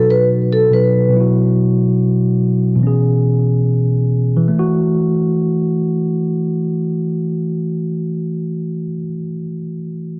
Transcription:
Already playing: tine electric piano B2 F#3 D#4 F#4
0.10 vibraphone B4
0.52 vibraphone A4
0.70 tine electric piano B2 F#3 D#4, vibraphone B4
0.76 tine electric piano A4
1.09 tine electric piano B2 F#3
1.17 tine electric piano E4 F#4
2.76 tine electric piano B2 E3
2.83 tine electric piano C#4 G#4
4.37 tine electric piano E3
4.48 tine electric piano A3
4.59 tine electric piano F#4

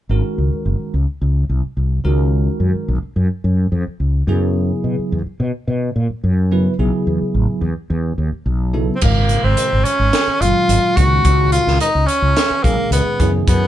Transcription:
0.09 fretless electric bass G#1, tine electric piano D#3 G#3 C#4 F#4 A#4
0.38 fretless electric bass C#2
0.52 muted fretless electric bass stroke
0.65 fretless electric bass F#1
0.80 muted fretless electric bass stroke
0.94 fretless electric bass C#2
1.22 fretless electric bass C#2
1.49 fretless electric bass C2
1.64 muted fretless electric bass stroke
1.77 fretless electric bass C2
2.04 fretless electric bass C#2, tine electric piano D#3 G#3 C#4 F#4 A#4
2.60 fretless electric bass F#2
2.74 muted fretless electric bass stroke
2.88 fretless electric bass B1
3.03 muted fretless electric bass stroke
3.16 fretless electric bass F#2
3.44 fretless electric bass F#2
3.72 fretless electric bass F2
3.87 muted fretless electric bass stroke
4.00 fretless electric bass C#2
4.27 fretless electric bass F#2, tine electric piano C#3 F#3 B3 E4 G#4
4.84 fretless electric bass B2
4.99 muted fretless electric bass stroke
5.12 fretless electric bass E2
5.26 muted fretless electric bass stroke
5.40 fretless electric bass B2
5.68 fretless electric bass B2
5.96 fretless electric bass A#2
6.10 muted fretless electric bass stroke
6.24 fretless electric bass F#2
6.51 tine electric piano C#3 F#3 B3 E4 B4
6.79 fretless electric bass B1, tine electric piano C#3 F#3 B3 E4 G#4
7.07 fretless electric bass E2
7.22 muted fretless electric bass stroke
7.34 fretless electric bass A1
7.48 muted fretless electric bass stroke
7.61 fretless electric bass E2
7.90 fretless electric bass E2
8.18 fretless electric bass D#2
8.32 muted fretless electric bass stroke
8.46 fretless electric bass B1
8.73 tine electric piano C#3 F#3 B3 E4 A4
8.95 tenor saxophone C4
9.01 fretless electric bass G#1, tine electric piano A#2 C#3 D#3 G#3 F4, tenor saxophone A#3, kick, crash
9.29 closed hi-hat
9.44 fretless electric bass G#1, tenor saxophone C4
9.57 closed hi-hat
9.73 fretless electric bass G#1
9.84 tenor saxophone C#4, closed hi-hat
9.99 fretless electric bass G#1
10.13 snare, closed hi-hat
10.27 muted fretless electric bass stroke
10.41 fretless electric bass F#1, tine electric piano A#2 D#3 F#3 G#3 C#4, tenor saxophone F4, closed hi-hat
10.69 fretless electric bass G#1, closed hi-hat
10.96 fretless electric bass C#2, tine electric piano A#2 D#3 G#3 C#4 F#4, tenor saxophone F#4, kick, closed hi-hat
11.25 fretless electric bass C#2, kick, closed hi-hat
11.52 tenor saxophone F4, closed hi-hat
11.67 fretless electric bass C#2, snare
11.81 tenor saxophone D#4, closed hi-hat
11.95 fretless electric bass C#2
12.06 tenor saxophone C#4, closed hi-hat
12.22 fretless electric bass C#2
12.37 snare, closed hi-hat
12.50 muted fretless electric bass stroke
12.63 fretless electric bass B1, tine electric piano A#2 D#3 G#3 C#4 G#4, tenor saxophone A#3, kick, closed hi-hat
12.91 fretless electric bass C#2, tenor saxophone B3, closed hi-hat
13.20 fretless electric bass F#2, tine electric piano C#3 F#3 B3 E4 G#4, kick, closed hi-hat
13.47 fretless electric bass F#2, tenor saxophone B3, kick, closed hi-hat

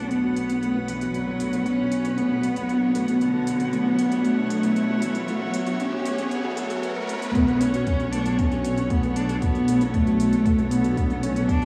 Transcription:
Already playing: double bass section B1, felt piano A3 D4 F#4, string quartet B3 B4 F#5, cello D4, riser
0.00 felt piano B3
0.07 cello B3, string quartet C#5, closed hi-hat
0.11 felt piano D4
0.24 felt piano F#4
0.36 felt piano D4, closed hi-hat
0.49 felt piano B3, closed hi-hat
0.63 felt piano A3, closed hi-hat
0.76 felt piano B3
0.88 cello E3, felt piano D4, closed hi-hat
1.01 felt piano F#4, closed hi-hat
1.14 cello F#3, felt piano D4, closed hi-hat
1.27 felt piano B3
1.40 felt piano A3, closed hi-hat
1.53 felt piano B3, closed hi-hat
1.66 cello C#4, felt piano D4, closed hi-hat
1.79 felt piano F#4
1.92 felt piano D4, closed hi-hat
2.05 felt piano B3, closed hi-hat
2.17 felt piano A3, cello B3, closed hi-hat
2.31 felt piano B3
2.43 felt piano D4, closed hi-hat
2.56 felt piano F#4, closed hi-hat
2.69 felt piano D4, closed hi-hat
2.82 felt piano B3
2.95 cello B2, felt piano A3, closed hi-hat
3.08 felt piano B3, closed hi-hat
3.21 cello D3, felt piano D4, closed hi-hat
3.34 felt piano F#4
3.47 felt piano D4, closed hi-hat
3.60 felt piano B3, closed hi-hat
3.72 felt piano A3, cello B3, closed hi-hat
3.85 felt piano B3
3.89 string quartet E5
3.98 felt piano D4, closed hi-hat
4.11 felt piano F#4, closed hi-hat
4.24 cello A3, felt piano D4, closed hi-hat
4.37 felt piano B3
4.50 felt piano A3, closed hi-hat
4.63 felt piano B3, closed hi-hat
4.76 felt piano D4, closed hi-hat
4.89 felt piano F#4
5.02 cello E3, felt piano D4, closed hi-hat
5.15 felt piano B3, closed hi-hat
5.28 cello F#3, felt piano A3, closed hi-hat
5.41 felt piano B3
5.54 felt piano D4, closed hi-hat
5.67 felt piano F#4, closed hi-hat
5.80 cello C#4, felt piano D4, closed hi-hat
5.93 felt piano B3
6.06 felt piano A3, closed hi-hat
6.18 felt piano B3, closed hi-hat
6.31 cello B3, felt piano D4, closed hi-hat
6.45 felt piano F#4
6.57 cello F#3, felt piano A3, closed hi-hat
6.70 felt piano F#4, closed hi-hat
6.83 felt piano B4, closed hi-hat
6.96 felt piano A3
7.09 cello A3, felt piano B3, closed hi-hat
7.22 felt piano A3, closed hi-hat
7.35 double bass section B1, felt piano A3, cello B3, kick, closed hi-hat
7.48 felt piano B3, closed hi-hat
7.53 string quartet A4
7.61 cello C#4, felt piano D4, closed hi-hat
7.74 felt piano F#4, closed hi-hat
7.87 felt piano D4, kick, closed hi-hat
8.00 felt piano B3, closed hi-hat
8.12 felt piano A3, cello D4, closed hi-hat
8.26 felt piano B3, closed hi-hat
8.38 cello C#4, felt piano D4, kick, closed hi-hat
8.52 felt piano F#4, closed hi-hat
8.65 felt piano D4, closed hi-hat
8.77 closed hi-hat
8.90 felt piano A3, cello B3, kick, closed hi-hat
9.03 felt piano B3, closed hi-hat
9.16 cello D4, felt piano D4, closed hi-hat
9.29 felt piano F#4, closed hi-hat
9.42 cello B3, felt piano D4, kick, closed hi-hat
9.55 felt piano B3, closed hi-hat
9.68 felt piano A3, closed hi-hat
9.81 felt piano B3, closed hi-hat
9.94 cello A3, felt piano D4, kick, closed hi-hat
10.07 felt piano F#4, closed hi-hat
10.20 felt piano D4, closed hi-hat
10.32 felt piano B3, closed hi-hat
10.46 felt piano A3, kick, closed hi-hat
10.58 felt piano B3, closed hi-hat
10.71 cello B3, felt piano D4, closed hi-hat
10.84 felt piano F#4, closed hi-hat
10.97 felt piano D4, kick, closed hi-hat
11.10 felt piano B3, closed hi-hat
11.23 felt piano A3, cello C#4, closed hi-hat
11.36 felt piano B3, closed hi-hat
11.49 cello D4, felt piano D4, kick, closed hi-hat
11.61 felt piano F#4, closed hi-hat

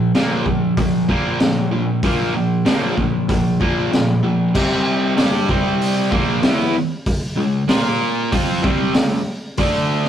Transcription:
Already playing: distorted electric guitar A#2 F3
0.14 distorted electric guitar A#2 F3 A#3, snare, open hi-hat
0.46 distorted electric guitar A#2 F3, kick
0.77 distorted electric guitar A#2 F3, kick, open hi-hat
1.09 distorted electric guitar A#2 F3 A#3, kick
1.40 distorted electric guitar A#2 F3, snare, open hi-hat
1.72 distorted electric guitar A#2 F3
2.03 distorted electric guitar A#2 F3 A#3, kick, open hi-hat
2.34 distorted electric guitar A#2 F3
2.65 distorted electric guitar A#2 F3 A#3, snare, open hi-hat
2.98 distorted electric guitar A#2 F3, kick
3.29 distorted electric guitar A#2 F3, kick, open hi-hat
3.60 distorted electric guitar A#2 F3 A#3, kick
3.92 distorted electric guitar A#2 F3, snare, open hi-hat
4.23 distorted electric guitar A#2 F3
4.54 distorted electric guitar C3 G3 C4, kick, crash
5.17 distorted electric guitar G3 D4 G4, snare, open hi-hat
5.49 distorted electric guitar C3 G3 C4, kick
5.82 open hi-hat
6.12 distorted electric guitar A#2 F3 A#3, kick
6.43 distorted electric guitar E3 B3 E4, snare, open hi-hat
7.06 kick, open hi-hat
7.36 distorted electric guitar C#3 G#3
7.68 distorted electric guitar A#3 F4 A#4, snare, open hi-hat
8.32 distorted electric guitar F3 C4 F4, kick, open hi-hat
8.63 distorted electric guitar C3 G3 C4, kick
8.95 distorted electric guitar C#3 G#3, snare, open hi-hat
9.57 distorted electric guitar D3 A3 D4, kick, open hi-hat
10.05 snare

